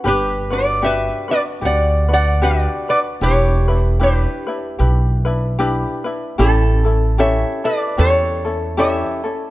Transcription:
0.04 1.08 G1 medium
0.04 0.51 D4 medium
0.04 0.51 G4 medium
0.04 0.49 B4 medium
0.04 0.52 B4 medium
0.08 0.50 G4 medium
0.50 0.81 D4 soft
0.50 0.81 F#4 medium
0.50 0.82 B4 soft
0.50 0.82 B4 medium
0.50 0.84 D5 medium
0.82 1.29 D4 medium
0.82 1.28 F#4 medium
0.82 1.29 G4 medium
0.82 1.27 B4 medium
0.82 1.28 B4 medium
0.82 1.31 E5 loud
1.28 1.61 D4 soft
1.28 1.62 F#4 soft
1.28 1.62 B4 medium
1.28 1.40 D5 loud
1.32 1.41 B4 medium
1.61 2.65 D2 medium
1.61 2.09 D4 soft
1.61 2.08 F#4 medium
1.61 2.09 G4 medium
1.61 2.07 B4 medium
1.61 2.12 F#5 medium
1.66 2.08 D5 medium
2.08 2.41 D4 soft
2.08 2.41 F#4 soft
2.08 2.42 B4 soft
2.13 2.42 D5 medium
2.13 2.45 F#5 loud
2.42 2.89 D4 medium
2.42 2.89 F#4 medium
2.42 2.89 G4 medium
2.42 2.88 B4 medium
2.42 2.86 B4 medium
2.42 2.89 D5 medium
2.89 3.20 D4 soft
2.89 3.22 F#4 soft
2.89 3.22 B4 medium
2.89 2.98 B4 medium
2.89 2.98 D5 medium
3.21 4.24 E1 loud
3.21 3.68 D4 medium
3.21 3.68 E4 medium
3.21 3.68 G4 medium
3.21 3.98 G4 medium
3.21 3.67 B4 medium
3.21 3.82 C#5 loud
3.68 4.00 D4 soft
3.68 3.99 E4 medium
3.68 4.00 B4 medium
3.82 4.03 B4 loud
4.00 4.47 D4 medium
4.00 4.47 E4 medium
4.00 4.47 G4 medium
4.00 6.03 G4 medium
4.00 4.46 B4 medium
4.00 6.04 B4 medium
4.47 4.78 D4 soft
4.47 4.79 E4 medium
4.47 4.79 B4 medium
4.79 5.83 B1 medium
4.79 5.26 D4 medium
4.79 5.25 E4 medium
4.79 5.26 G4 medium
4.79 5.24 B4 medium
5.25 5.58 D4 medium
5.25 5.58 E4 medium
5.25 5.59 B4 medium
5.59 6.06 D4 loud
5.59 6.05 E4 loud
5.59 6.06 G4 medium
5.59 6.03 B4 medium
6.04 6.38 D4 soft
6.04 6.38 E4 soft
6.04 6.38 B4 medium
6.38 7.42 A1 medium
6.38 6.85 C#4 medium
6.38 6.85 E4 medium
6.38 7.15 E4 medium
6.38 6.85 G4 medium
6.38 6.83 A4 medium
6.38 7.21 A4 medium
6.85 7.18 C#4 soft
6.85 7.18 E4 soft
6.85 7.18 A4 medium
7.18 7.65 C#4 medium
7.18 7.64 E4 medium
7.18 7.65 G4 medium
7.18 7.63 A4 medium
7.18 7.63 C#5 medium
7.18 7.65 E5 medium
7.64 7.97 E4 soft
7.64 7.97 A4 medium
7.64 7.96 B4 medium
7.64 7.99 D5 loud
7.97 9.02 E2 loud
7.97 8.45 C#4 medium
7.97 8.45 E4 medium
7.97 8.44 G4 medium
7.97 8.44 A4 medium
7.97 8.75 A4 medium
7.97 8.78 C#5 loud
8.45 8.76 C#4 soft
8.45 8.77 E4 soft
8.45 8.77 A4 medium
8.77 9.24 C#4 medium
8.77 9.23 E4 medium
8.77 9.24 G4 medium
8.77 9.22 A4 medium
8.77 9.50 C#5 medium
8.77 9.50 E5 medium
9.24 9.50 C#4 soft
9.24 9.50 E4 soft
9.24 9.50 A4 soft

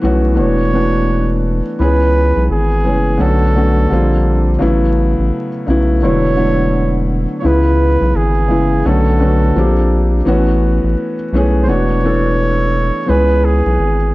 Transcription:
0.00 0.40 B1 medium
0.00 0.34 E3 medium
0.00 0.02 A3 medium
0.00 0.32 A3 medium
0.00 0.03 B3 medium
0.00 0.32 B3 medium
0.00 0.04 C#4 medium
0.00 0.33 C#4 medium
0.00 0.04 F#4 medium
0.04 0.33 F#4 medium
0.34 0.65 E3 medium
0.34 0.66 A3 medium
0.34 0.66 B3 medium
0.34 0.66 D4 medium
0.34 0.67 F#4 medium
0.39 1.62 E1 loud
0.39 1.40 C#5 loud
0.72 1.77 E3 medium
0.72 1.79 A3 medium
0.72 1.79 B3 medium
0.72 1.80 D4 medium
0.72 1.80 F#4 medium
1.79 2.33 C#2 loud
1.79 2.67 E3 medium
1.79 2.67 G#3 medium
1.79 2.67 B3 medium
1.79 2.68 C#4 medium
1.79 2.68 G#4 medium
1.79 2.46 B4 loud
2.36 2.49 B1 medium
2.50 2.87 G#1 medium
2.50 3.23 G#4 medium
2.84 3.18 F#1 medium
2.84 3.14 E3 medium
2.84 3.14 G#3 medium
2.84 3.14 B3 medium
2.84 3.15 C#4 medium
2.84 3.15 G#4 medium
3.17 3.87 B1 loud
3.17 3.48 D3 medium
3.17 3.49 A3 medium
3.17 3.49 B3 medium
3.17 3.49 C#4 medium
3.17 3.50 F#4 medium
3.22 4.62 A4 medium
3.55 3.88 D3 medium
3.55 3.91 A3 medium
3.55 3.91 B3 medium
3.55 3.92 C#4 medium
3.55 3.92 F#4 medium
3.90 4.57 A#1 loud
3.90 4.50 D3 medium
3.90 4.50 G3 medium
3.90 4.51 A#3 medium
3.90 4.51 C4 medium
3.90 4.51 F4 medium
4.59 5.15 A1 loud
4.59 5.48 C#3 medium
4.59 5.48 F#3 medium
4.59 5.49 A3 medium
4.59 5.49 B3 medium
4.59 5.49 E4 medium
5.19 5.31 A1 medium
5.67 6.05 B1 medium
5.67 5.96 C#3 medium
5.67 5.97 F#3 medium
5.67 5.97 A3 medium
5.67 5.97 B3 medium
5.67 5.98 E4 medium
6.02 7.26 E1 loud
6.02 6.32 D3 medium
6.02 6.32 F#3 medium
6.02 6.32 A3 medium
6.02 6.33 B3 medium
6.02 6.33 E4 medium
6.02 7.05 C#5 loud
6.36 7.43 D3 medium
6.36 7.43 F#3 medium
6.36 7.43 A3 medium
6.36 7.43 B3 medium
6.36 7.43 E4 medium
7.39 8.31 C#3 medium
7.39 8.31 E3 medium
7.39 7.48 C#5 medium
7.43 7.97 C#2 medium
7.43 8.31 G#3 medium
7.43 8.32 B3 medium
7.43 8.32 E4 medium
7.43 8.18 B4 loud
8.01 8.14 B1 medium
8.15 8.52 G#1 medium
8.15 8.88 G#4 medium
8.48 8.83 F#1 medium
8.48 8.78 C#3 medium
8.48 8.79 E3 medium
8.48 8.79 G#3 medium
8.48 8.79 B3 medium
8.48 8.80 E4 medium
8.85 9.52 B1 loud
8.85 9.14 D3 medium
8.85 9.15 A3 medium
8.85 9.15 B3 medium
8.85 9.15 C#4 medium
8.85 9.16 F#4 medium
8.85 10.27 A4 medium
9.19 9.55 D3 medium
9.19 9.55 A3 medium
9.19 9.56 B3 medium
9.19 9.56 C#4 medium
9.19 9.56 F#4 medium
9.56 10.22 A#1 loud
9.56 10.15 F3 medium
9.56 10.16 A#3 medium
9.56 10.16 C4 medium
9.56 10.16 D4 medium
9.56 10.17 G4 medium
10.25 10.80 A1 loud
10.25 11.13 E3 medium
10.25 11.14 A3 medium
10.25 11.14 B3 medium
10.25 11.14 C#4 medium
10.25 11.15 F#4 medium
10.84 10.96 A1 medium
11.33 11.69 B1 medium
11.33 11.62 E3 medium
11.33 11.62 A3 medium
11.33 11.63 B3 medium
11.33 11.63 C#4 medium
11.33 11.64 G#4 medium
11.63 11.96 E3 medium
11.63 11.96 A3 medium
11.63 11.70 C5 medium
11.67 12.91 E1 loud
11.67 11.97 B3 medium
11.67 11.97 D4 medium
11.67 11.98 F#4 medium
11.67 13.11 C#5 loud
12.03 13.04 E3 medium
12.03 13.09 A3 medium
12.03 13.06 B3 medium
12.03 13.09 D4 medium
12.03 13.10 A4 medium
13.06 13.62 C#2 loud
13.06 13.95 E3 medium
13.06 13.95 G#3 medium
13.06 13.96 B3 medium
13.06 13.96 C#4 medium
13.06 13.96 G#4 medium
13.06 13.47 B4 medium
13.45 14.15 G#4 medium
13.66 13.78 B1 medium
13.79 14.12 G#1 medium

